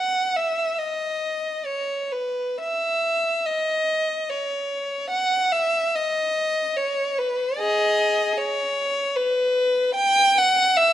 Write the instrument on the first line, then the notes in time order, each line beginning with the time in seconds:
violin
Already playing: F#5
0.36 E5
0.78 D#5
1.66 C#5
2.12 B4
2.60 E5
3.46 D#5
4.29 C#5
5.10 F#5
5.52 E5
5.95 D#5
6.77 C#5
7.18 B4
7.58 G#4 D#5
8.37 C#5
9.16 B4
9.94 G5
10.38 F#5
10.77 E5